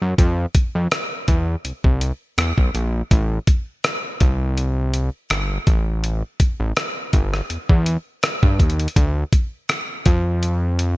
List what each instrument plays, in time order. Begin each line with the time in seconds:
0.02 analog synth bass F#2
0.18 analog synth bass F2, kick, closed hi-hat
0.55 kick, closed hi-hat
0.75 analog synth bass F2
0.91 cross-stick, closed hi-hat
1.28 analog synth bass E2, kick, closed hi-hat
1.65 analog synth bass C2, closed hi-hat
1.84 analog synth bass C2, kick
2.01 closed hi-hat
2.38 analog synth bass E2, cross-stick, closed hi-hat
2.58 analog synth bass B1, kick
2.75 analog synth bass A#1, closed hi-hat
3.11 analog synth bass A1, kick, closed hi-hat
3.47 kick, closed hi-hat
3.84 cross-stick, closed hi-hat
4.20 analog synth bass C2, kick, closed hi-hat
4.58 closed hi-hat
4.94 closed hi-hat
5.30 analog synth bass G1, cross-stick, closed hi-hat
5.67 analog synth bass A1, kick, closed hi-hat
6.04 closed hi-hat
6.40 kick, closed hi-hat
6.60 analog synth bass A1
6.77 cross-stick, closed hi-hat
7.13 analog synth bass G1, kick, closed hi-hat
7.34 cross-stick
7.50 analog synth bass E2, closed hi-hat
7.69 analog synth bass E2, kick
7.86 closed hi-hat
8.23 cross-stick, closed hi-hat
8.43 analog synth bass G2, kick
8.60 analog synth bass D#2, kick, closed hi-hat
8.70 closed hi-hat
8.80 closed hi-hat
8.88 closed hi-hat
8.96 analog synth bass D2, kick, closed hi-hat
9.33 kick, closed hi-hat
9.69 cross-stick, closed hi-hat
10.06 analog synth bass F2, kick, closed hi-hat
10.43 closed hi-hat
10.79 closed hi-hat